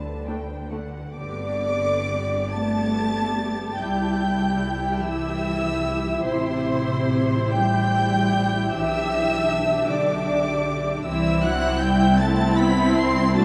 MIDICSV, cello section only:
0, 0, Header, 1, 2, 480
1, 0, Start_track
1, 0, Key_signature, 1, "major"
1, 0, Tempo, 896861
1, 620, Time_signature, 6, 3, 24, 8
1, 1588, Tempo, 818554
1, 3028, Tempo, 841515
1, 4468, Tempo, 775194
1, 7873, End_track
2, 0, Start_track
2, 0, Title_t, "Cello section"
2, 0, Program_c, 0, 48
2, 0, Note_on_c, 0, 50, 68
2, 535, Note_off_c, 0, 50, 0
2, 621, Note_on_c, 0, 50, 86
2, 1339, Note_off_c, 0, 50, 0
2, 1359, Note_on_c, 0, 57, 106
2, 2069, Note_on_c, 0, 55, 73
2, 2071, Note_off_c, 0, 57, 0
2, 2774, Note_off_c, 0, 55, 0
2, 2789, Note_on_c, 0, 52, 86
2, 3499, Note_on_c, 0, 48, 87
2, 3501, Note_off_c, 0, 52, 0
2, 4221, Note_off_c, 0, 48, 0
2, 4240, Note_on_c, 0, 55, 93
2, 4953, Note_off_c, 0, 55, 0
2, 4955, Note_on_c, 0, 52, 94
2, 5656, Note_off_c, 0, 52, 0
2, 5667, Note_on_c, 0, 50, 87
2, 6388, Note_on_c, 0, 52, 99
2, 6391, Note_off_c, 0, 50, 0
2, 6623, Note_off_c, 0, 52, 0
2, 6630, Note_on_c, 0, 54, 108
2, 6857, Note_on_c, 0, 55, 101
2, 6863, Note_off_c, 0, 54, 0
2, 7095, Note_off_c, 0, 55, 0
2, 7100, Note_on_c, 0, 57, 103
2, 7338, Note_off_c, 0, 57, 0
2, 7338, Note_on_c, 0, 59, 103
2, 7580, Note_off_c, 0, 59, 0
2, 7581, Note_on_c, 0, 60, 121
2, 7820, Note_off_c, 0, 60, 0
2, 7825, Note_on_c, 0, 57, 120
2, 7873, Note_off_c, 0, 57, 0
2, 7873, End_track
0, 0, End_of_file